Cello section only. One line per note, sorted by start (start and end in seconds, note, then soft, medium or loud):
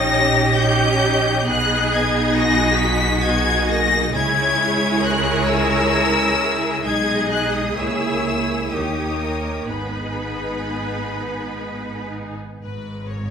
0.00 0.16 D#4 medium
0.16 1.48 G4 loud
1.47 2.34 G#4 loud
2.35 4.13 F#4 medium
4.13 5.00 E4 medium
5.02 6.85 A#4 loud
6.84 8.70 G#4 medium
8.71 9.18 G4 medium
9.19 9.67 A#4 medium
9.69 12.10 B4 medium
12.61 13.30 G#2 medium